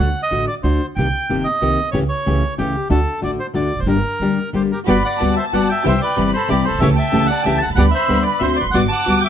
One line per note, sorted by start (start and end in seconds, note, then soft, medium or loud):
0.00 0.12 D2 medium
0.00 0.21 F#5 medium
0.23 0.45 D#5 medium
0.31 0.44 A1 soft
0.31 0.48 D3 medium
0.31 0.48 A3 medium
0.31 0.48 D4 medium
0.31 0.48 F#4 medium
0.48 0.55 D5 medium
0.63 0.77 D2 medium
0.63 0.80 D3 medium
0.63 0.80 A3 medium
0.63 0.81 D4 medium
0.63 0.81 F#4 medium
0.63 0.86 C5 medium
0.96 1.10 C2 medium
0.96 1.06 C3 medium
0.96 1.06 D#3 medium
0.96 1.07 A#3 medium
0.96 1.06 C4 medium
0.96 1.07 G4 medium
0.96 1.47 G5 medium
1.29 1.43 G1 soft
1.29 1.46 C3 medium
1.29 1.46 D#3 medium
1.29 1.46 A#3 medium
1.29 1.47 C4 medium
1.29 1.47 G4 medium
1.44 1.90 D#5 medium
1.61 1.75 C2 soft
1.61 1.78 C3 medium
1.61 1.78 D#3 medium
1.61 1.78 A#3 medium
1.61 1.79 C4 medium
1.61 1.79 G4 medium
1.92 2.07 C#2 medium
1.92 2.02 C#3 medium
1.92 2.02 E3 medium
1.92 2.03 A3 medium
1.92 2.03 C#4 medium
1.92 2.03 G4 medium
1.92 1.99 C#5 medium
2.09 2.54 C#5 medium
2.26 2.40 C#2 medium
2.26 2.43 C#3 medium
2.26 2.43 E3 medium
2.26 2.43 A3 medium
2.26 2.43 C#4 medium
2.26 2.43 G4 medium
2.58 2.72 C#2 medium
2.58 2.75 C#3 medium
2.58 2.75 E3 medium
2.58 2.75 A3 medium
2.58 2.75 C#4 medium
2.58 2.88 G4 medium
2.58 2.75 G4 medium
2.90 3.04 D2 medium
2.90 2.99 D3 medium
2.90 2.99 A3 medium
2.90 2.99 D4 medium
2.90 2.99 F#4 medium
2.90 3.20 A4 medium
3.21 3.37 A1 medium
3.21 3.39 D3 medium
3.21 3.39 A3 medium
3.21 3.39 D4 medium
3.21 3.39 F#4 medium
3.21 3.31 D5 medium
3.40 3.47 C5 medium
3.54 3.69 D2 medium
3.54 3.71 D3 medium
3.54 3.71 A3 medium
3.54 3.71 D4 medium
3.54 3.72 F#4 medium
3.54 3.80 D5 medium
3.76 3.79 E1 soft
3.76 3.82 F1 soft
3.80 3.86 F#1 medium
3.80 3.87 C5 medium
3.86 4.00 G1 medium
3.86 3.96 D3 medium
3.86 3.96 G3 medium
3.86 3.96 A#3 medium
3.86 3.96 D4 medium
3.86 3.96 G4 medium
3.86 4.50 A#4 medium
4.20 4.34 D2 soft
4.20 4.38 D3 medium
4.20 4.38 G3 medium
4.20 4.38 A#3 medium
4.20 4.38 D4 medium
4.20 4.38 G4 medium
4.53 4.67 G1 soft
4.53 4.70 D3 medium
4.53 4.71 G3 medium
4.53 4.71 A#3 medium
4.53 4.71 D4 medium
4.53 4.71 G4 medium
4.53 4.63 G4 soft
4.53 4.62 C5 medium
4.72 4.80 G4 soft
4.72 4.79 A#4 medium
4.86 5.01 G1 medium
4.86 4.96 G3 medium
4.86 5.00 B3 medium
4.86 4.96 B3 medium
4.86 5.00 F#4 medium
4.86 4.96 F#4 medium
4.86 5.00 G4 medium
4.86 5.03 B4 medium
4.86 5.03 D5 medium
4.86 5.17 B5 medium
5.04 5.35 D5 medium
5.04 5.34 F#5 medium
5.19 5.34 D2 medium
5.19 5.37 G3 medium
5.19 5.33 B3 soft
5.19 5.37 B3 medium
5.19 5.33 F#4 soft
5.19 5.37 F#4 medium
5.19 5.33 G4 soft
5.19 5.84 A5 medium
5.37 5.45 C5 medium
5.37 5.44 E5 medium
5.52 5.66 G1 soft
5.52 5.69 G3 medium
5.52 5.66 B3 soft
5.52 5.69 B3 medium
5.52 5.66 F#4 soft
5.52 5.70 F#4 medium
5.52 5.66 G4 medium
5.52 5.69 D5 medium
5.52 5.68 F#5 medium
5.69 5.84 E5 medium
5.69 5.85 G5 medium
5.84 5.99 C2 medium
5.84 5.93 C3 medium
5.84 5.93 E3 medium
5.84 5.94 G3 medium
5.84 5.98 C4 medium
5.84 5.94 C4 medium
5.84 5.98 E4 medium
5.84 5.94 E4 medium
5.84 5.98 G4 medium
5.84 6.00 E5 medium
5.84 6.17 G5 medium
5.88 6.01 C5 medium
6.01 6.32 B4 medium
6.01 6.31 D5 medium
6.17 6.31 G1 medium
6.17 6.33 C3 medium
6.17 6.33 E3 medium
6.17 6.33 G3 medium
6.17 6.30 C4 soft
6.17 6.33 C4 medium
6.17 6.30 E4 soft
6.17 6.33 E4 medium
6.17 6.30 G4 soft
6.17 6.81 B5 medium
6.34 6.49 A4 medium
6.34 6.50 C5 medium
6.48 6.63 C2 medium
6.48 6.65 C3 medium
6.48 6.65 E3 medium
6.48 6.65 G3 medium
6.48 6.65 C4 medium
6.48 6.62 C4 soft
6.48 6.65 E4 medium
6.48 6.62 E4 soft
6.48 6.62 G4 medium
6.48 6.66 G4 medium
6.48 6.64 D5 medium
6.65 6.81 A4 medium
6.65 6.80 C5 medium
6.70 6.73 A#1 soft
6.75 6.78 B1 medium
6.79 6.82 C2 medium
6.79 6.95 C#2 medium
6.79 6.89 C#3 medium
6.79 6.90 E3 medium
6.79 6.94 A3 medium
6.79 6.90 A3 medium
6.79 6.90 C#4 medium
6.79 6.94 C#4 medium
6.79 6.90 G4 medium
6.79 6.95 G4 medium
6.79 6.87 E5 medium
6.79 7.73 A5 medium
6.83 6.89 C#5 medium
6.96 7.27 E5 medium
6.96 7.26 G5 loud
7.12 7.27 C#2 medium
7.12 7.29 C#3 medium
7.12 7.29 E3 medium
7.12 7.26 A3 soft
7.12 7.29 A3 medium
7.12 7.26 C#4 soft
7.12 7.29 C#4 medium
7.12 7.26 G4 medium
7.12 7.30 G4 medium
7.27 7.44 D5 medium
7.27 7.42 F#5 medium
7.42 7.61 C#3 medium
7.42 7.62 E3 medium
7.42 7.58 A3 medium
7.42 7.62 A3 medium
7.42 7.58 C#4 soft
7.42 7.62 C#4 medium
7.42 7.58 G4 medium
7.42 7.62 G4 medium
7.42 7.60 E5 medium
7.42 7.58 G5 medium
7.47 7.59 C#2 medium
7.58 7.66 A5 medium
7.62 7.69 B1 soft
7.62 7.69 F#5 medium
7.70 7.73 C2 medium
7.75 7.77 C#2 medium
7.75 7.91 D2 medium
7.75 7.86 D3 medium
7.75 7.86 G3 medium
7.75 7.90 B3 medium
7.75 7.86 B3 medium
7.75 7.90 D4 medium
7.75 7.90 G4 medium
7.75 7.86 G4 medium
7.75 7.83 F#5 medium
7.75 8.42 B5 medium
7.79 7.86 D5 medium
7.91 8.24 C5 medium
7.91 8.22 E5 medium
8.08 8.23 D2 medium
8.08 8.26 D3 medium
8.08 8.26 G3 medium
8.08 8.22 B3 soft
8.08 8.26 B3 medium
8.08 8.23 D4 soft
8.08 8.22 G4 soft
8.08 8.26 G4 medium
8.22 8.39 D5 medium
8.26 8.41 B4 medium
8.39 8.55 D2 medium
8.39 8.58 D3 medium
8.39 8.59 A3 medium
8.39 8.58 C4 medium
8.39 8.55 C4 soft
8.39 8.55 D4 soft
8.39 8.58 F#4 medium
8.39 8.55 F#4 medium
8.39 8.58 C5 medium
8.39 8.56 E5 medium
8.39 8.75 C6 medium
8.56 8.64 D5 medium
8.60 8.65 E1 soft
8.60 8.67 B4 medium
8.65 8.69 F1 medium
8.70 8.74 F#1 medium
8.70 8.83 G3 medium
8.70 8.88 G3 medium
8.70 8.88 B3 medium
8.70 8.79 F#5 medium
8.74 8.88 G1 medium
8.74 8.84 B3 medium
8.74 8.88 F#4 medium
8.74 8.84 F#4 medium
8.74 8.82 D5 medium
8.74 9.29 D6 medium
8.89 9.22 F#5 medium
8.89 9.20 A5 medium
9.06 9.21 D2 soft
9.06 9.23 G3 medium
9.06 9.21 G3 soft
9.06 9.23 B3 medium
9.06 9.21 B3 soft
9.06 9.23 F#4 medium
9.06 9.21 F#4 soft
9.21 9.29 E5 medium
9.21 9.29 G5 medium